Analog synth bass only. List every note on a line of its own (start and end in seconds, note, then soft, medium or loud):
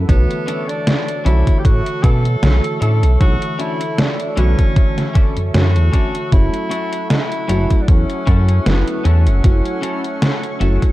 0.09 0.26 B1 loud
1.26 1.43 B1 medium
1.65 1.82 A2 medium
2.04 2.36 B2 loud
2.43 2.60 B1 medium
2.82 3.04 A2 medium
3.03 3.17 B1 medium
3.21 3.38 B1 loud
4.37 4.55 B1 medium
5.37 5.51 F#2 soft
5.54 5.77 F#2 loud
5.76 5.90 E2 loud
6.32 6.50 F#1 loud
7.49 7.67 F#1 medium
7.88 8.06 E2 medium
8.27 8.60 F#2 loud
8.66 8.84 F#1 medium
9.05 9.28 E2 medium
9.27 9.41 F#1 medium
9.44 9.62 F#1 loud
10.61 10.78 F#1 medium